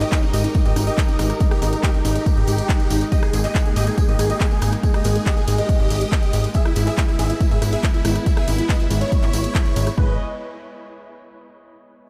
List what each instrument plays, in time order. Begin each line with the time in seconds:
Already playing: string section G#3 D#4 G4 A#4
0.01 supersaw synth G4 D#5, grand piano D#5, clap, closed hi-hat
0.12 supersaw synth D#4, grand piano D#4, kick, clap, closed hi-hat, tambourine
0.23 supersaw synth D#4, grand piano D#4, closed hi-hat, tambourine
0.33 analog synth bass G#1, supersaw synth G4 D#5, grand piano D#5, open hi-hat, tambourine
0.44 supersaw synth D#4, grand piano D#4, closed hi-hat, tambourine
0.54 supersaw synth D#4, grand piano D#4, kick, closed hi-hat, tambourine
0.65 analog synth bass G#1, supersaw synth G4 D#5, grand piano D#5, closed hi-hat, tambourine
0.76 analog synth bass G#1, supersaw synth D#4, grand piano D#4, cross-stick, open hi-hat, tambourine
0.87 supersaw synth G4 D#5, grand piano D#5, closed hi-hat, tambourine
0.98 supersaw synth D#4, grand piano D#4, kick, clap, closed hi-hat, tambourine
1.08 supersaw synth D#4, grand piano D#4, closed hi-hat, tambourine
1.19 analog synth bass G#1, supersaw synth D#4, grand piano D#4, cross-stick, open hi-hat, tambourine
1.30 cross-stick, closed hi-hat, tambourine
1.40 supersaw synth D#4, grand piano D#4, kick, closed hi-hat, tambourine
1.51 supersaw synth D#4 G4, grand piano G4, cross-stick, closed hi-hat, tambourine
1.62 analog synth bass G#1, supersaw synth D#4, grand piano D#4, open hi-hat, tambourine
1.73 supersaw synth D#4, grand piano D#4, closed hi-hat, tambourine
1.83 supersaw synth D#4 G4, grand piano G4, kick, clap, closed hi-hat, tambourine
1.94 supersaw synth D#4, grand piano D#4, closed hi-hat, tambourine
2.05 analog synth bass G#1, supersaw synth D#4, grand piano D#4, open hi-hat, tambourine
2.15 supersaw synth D#4 G4, grand piano G4, closed hi-hat, tambourine
2.26 kick, closed hi-hat, tambourine
2.37 analog synth bass G#1, closed hi-hat, tambourine
2.47 analog synth bass G#1, open hi-hat, tambourine
2.58 closed hi-hat, tambourine
2.69 kick, clap, closed hi-hat, tambourine
2.80 closed hi-hat, tambourine
2.90 analog synth bass G#1, open hi-hat, tambourine
3.01 closed hi-hat, tambourine
3.12 string section A#3, supersaw synth G4 D#5, grand piano D#5, kick, closed hi-hat, tambourine
3.23 grand piano G#4, supersaw synth G#4, cross-stick, closed hi-hat, tambourine
3.33 analog synth bass G#1, supersaw synth G#4, grand piano G#4, open hi-hat, ride, tambourine
3.44 supersaw synth G4 D#5, grand piano D#5, clap, closed hi-hat, tambourine
3.55 supersaw synth G#4, grand piano G#4, kick, clap, closed hi-hat, tambourine
3.65 supersaw synth G#4, grand piano G#4, closed hi-hat, tambourine
3.76 analog synth bass G#1, supersaw synth G4 D#5, grand piano D#5, open hi-hat, ride, tambourine
3.87 grand piano G#4, supersaw synth G#4, closed hi-hat, tambourine
3.98 supersaw synth G#4, kick, closed hi-hat, tambourine
4.08 analog synth bass G#1, supersaw synth G4 D#5, grand piano D#5, closed hi-hat, tambourine
4.19 analog synth bass G#1, grand piano G#4, supersaw synth G#4, cross-stick, open hi-hat, ride, tambourine
4.30 supersaw synth G4 D#5, grand piano D#5, closed hi-hat, tambourine
4.41 supersaw synth G#4, grand piano G#4, kick, clap, closed hi-hat, tambourine
4.51 grand piano G#4, supersaw synth G#4, closed hi-hat, tambourine
4.62 analog synth bass G#1, grand piano G#4, supersaw synth G#4, cross-stick, open hi-hat, ride, tambourine
4.72 cross-stick, closed hi-hat, tambourine
4.83 supersaw synth G#4, grand piano G#4, kick, closed hi-hat, tambourine
4.94 supersaw synth G4 D#5, grand piano D#5, cross-stick, closed hi-hat, tambourine
5.04 analog synth bass G#1, supersaw synth G#4, grand piano G#4, open hi-hat, ride, tambourine
5.15 supersaw synth G#4, grand piano G#4, closed hi-hat, tambourine
5.26 supersaw synth G4 D#5, grand piano D#5, kick, clap, closed hi-hat, tambourine
5.37 grand piano G#4, supersaw synth G#4, closed hi-hat, tambourine
5.48 analog synth bass G#1, supersaw synth G#4, grand piano G#4, open hi-hat, ride, tambourine
5.58 supersaw synth G4 D#5, grand piano D#5, closed hi-hat, tambourine
5.69 kick, closed hi-hat, tambourine
5.80 analog synth bass G#1, closed hi-hat, tambourine
5.90 analog synth bass G#1, open hi-hat, ride, tambourine
6.01 closed hi-hat, tambourine
6.12 kick, clap, closed hi-hat, tambourine
6.22 closed hi-hat, tambourine
6.33 analog synth bass G#1, open hi-hat, ride, tambourine
6.44 closed hi-hat, tambourine
6.54 string section B3 E4, supersaw synth G#4 E5, grand piano E5, kick, closed hi-hat, tambourine
6.65 supersaw synth E4, grand piano E4, cross-stick, closed hi-hat, tambourine
6.76 analog synth bass G#1, supersaw synth E4, grand piano E4, open hi-hat, ride, tambourine
6.87 supersaw synth G#4 E5, grand piano E5, clap, closed hi-hat, tambourine
6.97 supersaw synth E4, grand piano E4, kick, clap, closed hi-hat, tambourine
7.08 grand piano E4, supersaw synth E4, closed hi-hat, tambourine
7.19 analog synth bass G#1, supersaw synth G#4 E5, grand piano E5, open hi-hat, ride, tambourine
7.29 supersaw synth E4, grand piano E4, closed hi-hat, tambourine
7.40 supersaw synth E4, grand piano E4, kick, closed hi-hat, tambourine
7.51 analog synth bass G#1, supersaw synth G#4 E5, grand piano E5, closed hi-hat, tambourine
7.62 analog synth bass G#1, supersaw synth E4, grand piano E4, cross-stick, open hi-hat, ride, tambourine
7.72 supersaw synth G#4 E5, grand piano E5, closed hi-hat, tambourine
7.83 supersaw synth E4, grand piano E4, kick, clap, closed hi-hat, tambourine
7.94 supersaw synth E4, grand piano E4, closed hi-hat, tambourine
8.05 analog synth bass G#1, supersaw synth E4, grand piano E4, cross-stick, open hi-hat, ride, tambourine
8.15 cross-stick, closed hi-hat, tambourine
8.26 supersaw synth E4, grand piano E4, kick, closed hi-hat, tambourine
8.37 supersaw synth G#4 E5, grand piano E5, cross-stick, closed hi-hat, tambourine
8.48 analog synth bass G#1, supersaw synth E4, grand piano E4, open hi-hat, ride, tambourine
8.58 supersaw synth E4, grand piano E4, closed hi-hat, tambourine
8.69 supersaw synth B4 D#5, grand piano D#5, kick, clap, closed hi-hat, tambourine
8.80 grand piano E4, supersaw synth E4, closed hi-hat, tambourine
8.91 analog synth bass G#1, supersaw synth E4, grand piano E4, open hi-hat, ride, tambourine
9.01 supersaw synth E4 C#5, grand piano C#5, closed hi-hat, tambourine
9.12 kick, closed hi-hat, tambourine
9.23 analog synth bass G#1, clap, closed hi-hat, tambourine
9.33 analog synth bass G#1, open hi-hat, ride, tambourine
9.44 closed hi-hat, tambourine
9.55 kick, clap, closed hi-hat, tambourine
9.66 closed hi-hat, tambourine
9.76 analog synth bass G#1, open hi-hat, ride, tambourine
9.86 cross-stick, closed hi-hat, tambourine
9.98 analog synth bass G#1, string section G#3 G#4 B4 D#5, supersaw synth B4, grand piano B4, kick